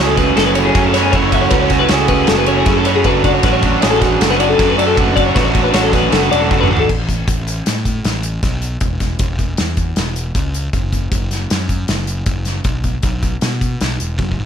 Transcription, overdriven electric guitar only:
Already playing: F#3
0.00 A3 C#4 F#4
0.35 F#3 A3 C#4 F#4
0.55 A3 C#4 F#4
0.74 F#3 A3 C#4 F#4
0.94 A3 C#4 F#4
1.13 F#3 A3 C#4 F#4
1.33 A3 C#4 F#4
1.52 F#3 A3 C#4 F#4
1.71 A3 C#4 F#4
1.90 F#3 A3 C#4 F#4
2.29 F#3 A3 C#4 F#4
2.48 A3 C#4 F#4
2.67 F#3 A3 C#4 F#4
2.86 A3 C#4 F#4
3.06 F#3 A3 D4 F#4
3.26 A3 D4 F#4
3.44 F#3 A3 D4 F#4
3.63 A3 D4 F#4
3.82 F#3 A3 D4 F#4
4.20 F#3 A3 D4 F#4
4.41 A3 D4 F#4
4.59 F#3 A3 D4 F#4
4.78 A3 D4 F#4
4.96 F#3 A3 D4 F#4
5.16 A3 D4 F#4
5.35 F#3 A3 D4 F#4
5.55 A3 D4 F#4
5.73 F#3 A3 D4 F#4
6.11 F#3 A3 D4 F#4
6.30 A3 D4 F#4
6.50 F#3 A3 D4 F#4
6.70 A3 D4 F#4

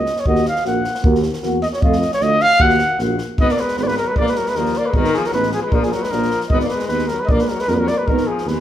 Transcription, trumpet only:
Already playing: D#5
0.20 C#5
0.27 D#5
0.48 F5
0.67 F#5
1.63 D#5
1.73 C#5
1.82 D#5
2.13 C#5
2.23 D#5
2.42 F5
2.62 F#5
3.40 D#5
3.52 D5
3.60 B4
3.80 B4 D5
3.87 B4
3.98 A#4
4.07 B4
4.17 D5
4.28 B4
4.37 A#4
4.49 B4
4.56 A#4
4.77 D5
4.86 B4
4.95 A#4
5.15 G#4
5.26 A#4
5.34 B4
5.53 G#4
5.63 B4
5.72 A#4
5.83 G#4
5.92 A#4
6.02 B4
6.11 A#4
6.50 D#5
6.61 D5
6.69 B4
6.88 B4
7.08 A#4
7.20 B4
7.26 D5 D#5
7.40 B4
7.48 A#4
7.60 B4
7.69 A#4
7.74 B4
7.79 A#4
7.88 D5
7.97 B4 D5
8.07 A#4
8.27 G#4
8.48 B4

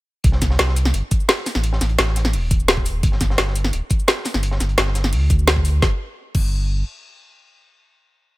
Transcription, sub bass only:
0.24 C2
0.42 C2
0.59 C2
0.94 G1
1.55 A1
1.81 A1
1.99 A1
2.33 D#1
3.03 G1
3.21 G1
3.38 G1
3.73 D1
4.34 G1
4.60 G1
4.78 G1
5.13 D2
5.82 G1
6.35 G1

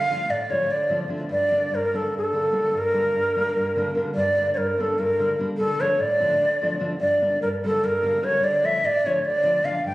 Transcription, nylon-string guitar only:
0.09 D3 F3 A3 D4
0.29 A2
0.49 D3 F3 A3 D4
0.70 D3
0.89 D3 F3 A3 D4
1.08 D3 F3 A3 D4
1.29 G2
1.51 D3 G3 A#3 D4
1.71 G2
1.93 D3 G3 A#3 D4
2.13 G2
2.33 D3 G3 A#3 D4
2.52 D3 G3 A#3 D4
2.73 G2
2.94 D3 G3 A#3 D4
3.15 G2
3.36 D3 G3 A#3 D4
3.56 G2
3.76 D3 G3 A#3 D4
3.95 D3 G3 A#3 D4
4.15 G2
4.37 D3 G3 A#3 D4
4.57 G2
4.78 D3 G3 A#3 D4
4.99 G2
5.19 D3 G3 A#3 D4
5.39 D3 G3 A#3 D4
5.60 D3
5.80 D3 F3 A3 D4
5.99 A2
6.20 D3 F3 A3 D4
6.40 D3
6.61 D3 F3 A3 D4
6.79 D3 F3 A3 D4
7.00 G2
7.21 D3 G3 A#3 D4
7.42 G2
7.64 D3 G3 A#3 D4
7.83 G2
8.02 D3 G3 A#3 D4
8.22 D3 G3 A#3 D4
8.40 D3
8.63 D3 F3 A3 D4
8.82 A2
9.04 D3 F3 A3 D4
9.25 D3
9.43 D3 F3 A3 D4
9.63 D3 F3 A3 D4
9.84 G2

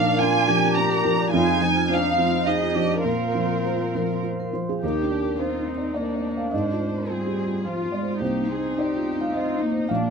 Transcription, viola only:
Already playing: D4
1.32 D#4
1.89 D#4
2.46 D#4
2.74 D4
3.04 C4
4.81 G4
5.40 D#4
5.96 D4
7.09 C4
7.65 F4
8.22 D#4
9.91 D4

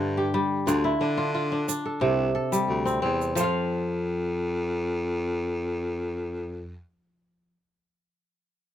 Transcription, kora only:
Already playing: G2 D3 C5 E5
0.17 G4
0.34 G3
0.67 D3 F4
0.84 E4
1.01 D4
1.17 F4
1.34 F4
1.52 D4
1.68 D4
1.85 A4
2.01 C3
2.35 A4
2.52 G3
2.85 C4
3.02 C4
3.35 F3
3.40 F4 F5

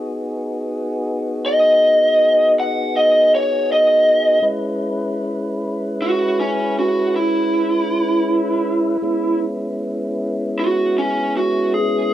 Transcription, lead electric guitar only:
1.46 D#5
2.60 F#5
2.96 D#5
3.35 C#5
3.72 D#5
6.02 F#4
6.40 C#4
6.79 F#4
7.16 E4
10.59 F#4
10.98 C#4
11.37 F#4
11.74 G#4

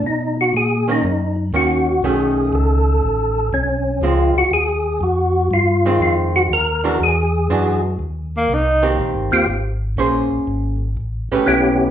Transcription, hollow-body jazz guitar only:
0.88 D#3 A#3 C#4
1.54 D#3 A#3 C#4
2.04 D#3 A3 C#4
4.03 F3 G#3 C4
5.86 D#3 G#3 C4
6.84 E3 G#3 D4 F#4
7.50 E3 G#3 D4 F#4
8.82 D#3 A#3 C4 G4
9.98 A#3 C#4 G#4 C5
11.32 A3 C#4 G4 B4

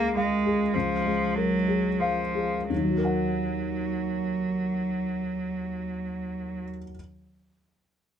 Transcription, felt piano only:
Already playing: C#2 G#3 G#4 A#4
0.16 F5
0.46 G#4
0.76 C#2
1.06 G#3
1.37 A#4
1.68 G#4
2.00 F5
2.35 G#4
2.70 D#2
2.77 D#3
2.83 F#3
2.90 F#4
2.98 A#4
3.05 F#5

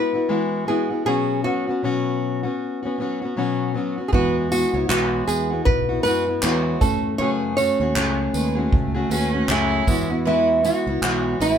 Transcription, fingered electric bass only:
4.13 E2
4.73 C#2
4.89 B1
5.28 E2
5.66 B1
6.05 F#2
6.43 E2
6.81 F#2
7.19 F#2
7.80 D#2
7.96 C#2
8.34 D#2
8.72 C#2
9.09 D#2
9.48 C#2
9.87 E2
10.87 C#2
11.02 B1
11.40 A1

